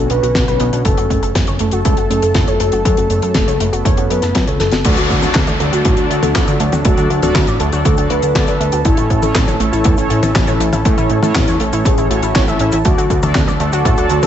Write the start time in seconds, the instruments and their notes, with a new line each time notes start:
Already playing: analog synth pad D3 B3 C#4 F#4
0.10 analog synth bass B1, synth arpeggio sound B3, soft synth lead B4, closed hi-hat
0.23 analog synth bass B1, synth arpeggio sound F#4, closed hi-hat
0.35 analog synth bass B1, synth arpeggio sound B3, kick, snare, closed hi-hat
0.48 analog synth bass B1, soft synth lead B4, synth arpeggio sound B4, closed hi-hat
0.60 analog synth bass B1, synth arpeggio sound B3, closed hi-hat
0.73 analog synth bass B1, synth arpeggio sound D4, closed hi-hat
0.85 analog synth bass F#1, analog synth pad F#3 A3 A4, synth arpeggio sound A3, soft synth lead A4, kick, closed hi-hat
0.97 analog synth bass F#1, synth arpeggio sound F#4, closed hi-hat
1.10 analog synth bass F#1, synth arpeggio sound A3, kick, closed hi-hat
1.23 analog synth bass F#1, synth arpeggio sound A4, closed hi-hat
1.35 analog synth bass F#1, synth arpeggio sound A3, kick, snare, closed hi-hat
1.47 analog synth bass F#1, synth arpeggio sound C#5, closed hi-hat
1.59 analog synth bass F#1, synth arpeggio sound A3, closed hi-hat
1.71 analog synth bass F#1, synth arpeggio sound F#4, soft synth lead A4, closed hi-hat
1.85 analog synth bass C#2, synth arpeggio sound A3, kick, closed hi-hat
1.97 analog synth bass F#1, synth arpeggio sound F#4, closed hi-hat
2.10 analog synth bass F#1, synth arpeggio sound A3, soft synth lead A4, closed hi-hat
2.22 analog synth bass F#1, synth arpeggio sound A4, closed hi-hat
2.34 analog synth bass F#1, synth arpeggio sound A3, kick, snare, closed hi-hat
2.47 analog synth bass F#1, soft synth lead A4, synth arpeggio sound C#5, closed hi-hat
2.60 analog synth bass F#1, synth arpeggio sound A3, closed hi-hat
2.72 analog synth bass F#1, synth arpeggio sound F#4, closed hi-hat
2.85 analog synth bass F#2, synth arpeggio sound A3, analog synth pad B3, soft synth lead A4, kick, closed hi-hat
2.97 analog synth bass F#1, synth arpeggio sound F#4, closed hi-hat
3.10 analog synth bass F#1, synth arpeggio sound A3, closed hi-hat
3.22 analog synth bass F#2, soft synth lead A4, synth arpeggio sound A4, closed hi-hat
3.34 analog synth bass F#1, synth arpeggio sound A3, kick, snare, closed hi-hat
3.48 analog synth bass C#2, synth arpeggio sound C#5, closed hi-hat
3.60 analog synth bass F#1, synth arpeggio sound A3, closed hi-hat
3.73 analog synth bass F#1, synth arpeggio sound F#4, closed hi-hat
3.85 analog synth bass F#1, synth arpeggio sound A3, soft synth lead C#5, kick, closed hi-hat
3.97 analog synth bass F#1, synth arpeggio sound F#4, closed hi-hat
4.10 analog synth bass F#2, synth arpeggio sound A3, soft synth lead B4, closed hi-hat
4.22 analog synth bass F#1, synth arpeggio sound A4, snare, closed hi-hat
4.35 analog synth bass F#2, synth arpeggio sound A3, kick, snare, closed hi-hat
4.47 analog synth bass C#2, soft synth lead A4, synth arpeggio sound C#5, closed hi-hat
4.60 analog synth bass F#1, synth arpeggio sound A3, snare, closed hi-hat
4.71 analog synth bass F#1, synth arpeggio sound F#4, snare, closed hi-hat
4.84 analog synth bass D2, analog polysynth D3 D4 F#4 A4 D5, analog synth pad F#3 A3 D4 A4, synth arpeggio sound A3, soft synth lead F#4, kick, closed hi-hat, crash, downlifter, cabasa
4.97 analog synth bass D2, synth arpeggio sound F#4, closed hi-hat, cabasa
5.10 analog synth bass D2, synth arpeggio sound A3, kick, closed hi-hat
5.22 analog synth bass D2, analog polysynth D3 D4 F#4 A4 D5, synth arpeggio sound A4, closed hi-hat, high tom, cabasa
5.34 analog synth bass D2, synth arpeggio sound A3, kick, snare, clap, closed hi-hat, cabasa
5.47 analog synth bass D2, synth arpeggio sound D5, closed hi-hat, high tom, cabasa
5.60 analog synth bass D2, analog polysynth D3 D4 F#4 A4 D5, synth arpeggio sound A3, closed hi-hat
5.72 analog synth bass D2, synth arpeggio sound F#4, soft synth lead F#4, closed hi-hat, cabasa
5.85 analog synth bass A1, synth arpeggio sound A3, kick, closed hi-hat, cabasa
5.97 analog synth bass D2, analog polysynth D3 D4 F#4 A4 D5, synth arpeggio sound F#4, closed hi-hat, cabasa
6.10 analog synth bass D2, synth arpeggio sound A3, soft synth lead F#4, closed hi-hat
6.22 analog synth bass D2, synth arpeggio sound A4, closed hi-hat, high tom, cabasa
6.35 analog synth bass D2, analog polysynth D3 D4 F#4 A4 D5, synth arpeggio sound A3, kick, snare, clap, closed hi-hat, cabasa
6.47 analog synth bass D2, soft synth lead F#4, synth arpeggio sound D5, closed hi-hat, cabasa
6.60 analog synth bass D2, synth arpeggio sound A3, closed hi-hat
6.72 analog synth bass D2, synth arpeggio sound F#4, closed hi-hat, high tom, cabasa
6.85 analog synth bass D1, analog polysynth D3 D4 F#4 A4 D5, synth arpeggio sound A3, soft synth lead F#4, kick, closed hi-hat, cabasa
6.97 analog synth bass D2, synth arpeggio sound F#4, closed hi-hat, cabasa
7.10 analog synth bass D2, synth arpeggio sound A3, closed hi-hat
7.22 analog synth bass D1, analog polysynth D3 D4 F#4 A4 D5, soft synth lead F#4, synth arpeggio sound A4, closed hi-hat, high tom, cabasa
7.35 analog synth bass D2, synth arpeggio sound A3, kick, snare, clap, closed hi-hat
7.47 analog synth bass A1, synth arpeggio sound D5, closed hi-hat, cabasa
7.60 analog synth bass D2, analog polysynth D3 D4 F#4 A4 D5, synth arpeggio sound A3, closed hi-hat
7.72 analog synth bass D2, synth arpeggio sound F#4, closed hi-hat, cabasa
7.85 analog synth bass D2, synth arpeggio sound A3, soft synth lead A4, kick, closed hi-hat, cabasa
7.97 analog synth bass D2, analog polysynth D3 D4 F#4 A4 D5, synth arpeggio sound F#4, closed hi-hat, cabasa
8.10 analog synth bass D2, synth arpeggio sound A3, soft synth lead B4, closed hi-hat
8.22 analog synth bass D2, synth arpeggio sound A4, closed hi-hat, cabasa
8.35 analog synth bass D2, analog polysynth D3 D4 F#4 A4 D5, synth arpeggio sound A3, kick, snare, clap, closed hi-hat, cabasa
8.47 analog synth bass D2, soft synth lead B4, synth arpeggio sound D5, closed hi-hat, cabasa
8.60 analog synth bass D2, synth arpeggio sound A3, closed hi-hat
8.72 analog synth bass D2, synth arpeggio sound F#4, closed hi-hat, cabasa
8.85 analog synth bass A1, analog polysynth A2 C#4 E4 A4 C#5, analog synth pad E3 C#4, synth arpeggio sound A3, soft synth lead E4, kick, closed hi-hat, cabasa
8.97 analog synth bass A1, synth arpeggio sound E4, closed hi-hat, cabasa
9.10 analog synth bass A1, synth arpeggio sound A3, kick, closed hi-hat
9.22 analog synth bass A1, analog polysynth A2 C#4 E4 A4 C#5, synth arpeggio sound A4, closed hi-hat, high tom, cabasa
9.35 analog synth bass A1, synth arpeggio sound A3, kick, snare, clap, closed hi-hat, cabasa
9.48 analog synth bass A1, synth arpeggio sound C#5, closed hi-hat, high tom, cabasa
9.60 analog synth bass A1, analog polysynth A2 C#4 E4 A4 C#5, synth arpeggio sound A3, closed hi-hat
9.72 analog synth bass A1, synth arpeggio sound E4, soft synth lead E4, closed hi-hat, cabasa
9.84 analog synth bass E2, synth arpeggio sound A3, kick, closed hi-hat, cabasa
9.97 analog synth bass A1, analog polysynth A2 C#4 E4 A4 C#5, synth arpeggio sound E4, closed hi-hat, cabasa
10.10 analog synth bass A1, synth arpeggio sound A3, soft synth lead E4, closed hi-hat
10.23 analog synth bass A1, synth arpeggio sound A4, closed hi-hat, high tom, cabasa
10.35 analog synth bass A1, analog polysynth A2 C#4 E4 A4 C#5, synth arpeggio sound A3, kick, snare, clap, closed hi-hat, cabasa
10.47 analog synth bass A1, soft synth lead E4, synth arpeggio sound C#5, closed hi-hat, cabasa
10.60 analog synth bass A1, synth arpeggio sound A3, closed hi-hat
10.73 analog synth bass A1, synth arpeggio sound E4, closed hi-hat, high tom, cabasa
10.85 analog polysynth A2 C#4 E4 A4 C#5, analog synth bass A2, synth arpeggio sound A3, soft synth lead E4, kick, closed hi-hat, cabasa
10.98 analog synth bass A1, synth arpeggio sound E4, closed hi-hat, cabasa
11.10 analog synth bass A1, synth arpeggio sound A3, closed hi-hat
11.22 analog synth bass A2, analog polysynth A2 C#4 E4 A4 C#5, soft synth lead E4, synth arpeggio sound A4, closed hi-hat, high tom, cabasa
11.35 analog synth bass A1, synth arpeggio sound A3, kick, snare, clap, closed hi-hat, cabasa
11.47 analog synth bass E2, synth arpeggio sound C#5, closed hi-hat, cabasa
11.60 analog synth bass A1, analog polysynth A2 C#4 E4 A4 C#5, synth arpeggio sound A3, closed hi-hat
11.73 analog synth bass A1, synth arpeggio sound E4, closed hi-hat, cabasa
11.85 analog synth bass A1, synth arpeggio sound A3, soft synth lead G#4, kick, closed hi-hat, cabasa
11.98 analog synth bass A1, analog polysynth A2 C#4 E4 A4 C#5, synth arpeggio sound E4, closed hi-hat, cabasa
12.10 analog synth bass A1, analog polysynth A2 C#4 E4 A4 C#5, synth arpeggio sound A3, soft synth lead F#4, closed hi-hat
12.22 analog synth bass A1, synth arpeggio sound E4, closed hi-hat, cabasa
12.35 analog synth bass A1, synth arpeggio sound C#5, kick, snare, clap, closed hi-hat, cabasa
12.47 analog synth bass A1, analog polysynth A2 C#4 E4 A4 E5, soft synth lead E4, synth arpeggio sound E5, closed hi-hat, cabasa
12.59 analog synth bass A1, analog polysynth C#4 E4 A4 E5, synth arpeggio sound C#4, closed hi-hat
12.72 analog synth bass A1, synth arpeggio sound E4, closed hi-hat, cabasa
12.85 analog synth bass D2, analog polysynth D3 D4 F#4 A4 D5, analog synth pad F#3 D4 A4, synth arpeggio sound A3, soft synth lead F#4, kick, closed hi-hat, cabasa
12.98 analog synth bass D2, synth arpeggio sound F#4, closed hi-hat, cabasa
13.10 analog synth bass D2, synth arpeggio sound A3, kick, closed hi-hat
13.23 analog synth bass D2, analog polysynth D3 D4 F#4 A4 D5, synth arpeggio sound A4, closed hi-hat, high tom, cabasa
13.35 analog synth bass D2, synth arpeggio sound A3, kick, snare, clap, closed hi-hat, cabasa
13.48 analog synth bass D2, synth arpeggio sound D5, closed hi-hat, high tom, cabasa
13.60 analog synth bass D2, analog polysynth D3 D4 F#4 A4 D5, synth arpeggio sound A3, closed hi-hat
13.73 analog synth bass D2, synth arpeggio sound F#4, soft synth lead F#4, closed hi-hat, cabasa
13.85 analog synth bass A1, synth arpeggio sound A3, kick, closed hi-hat, cabasa
13.97 analog synth bass D2, analog polysynth D3 D4 F#4 A4 D5, synth arpeggio sound F#4, closed hi-hat, cabasa
14.10 analog synth bass D2, synth arpeggio sound A3, soft synth lead F#4, closed hi-hat
14.23 analog synth bass D2, synth arpeggio sound A4, closed hi-hat, high tom, cabasa